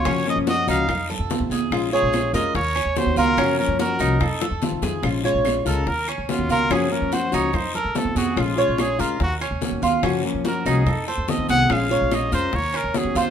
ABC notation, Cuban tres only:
X:1
M:4/4
L:1/8
Q:1/4=144
K:Bbm
V:1 name="Cuban tres"
D2 G E2 =A2 _A- | A d2 B2 D2 F | D2 G E2 =A2 _A | z d2 B2 D2 F |
D2 G E2 =A2 _A- | A d2 B2 D2 F | D2 G E2 =A2 _A- | A d2 B2 D2 F |]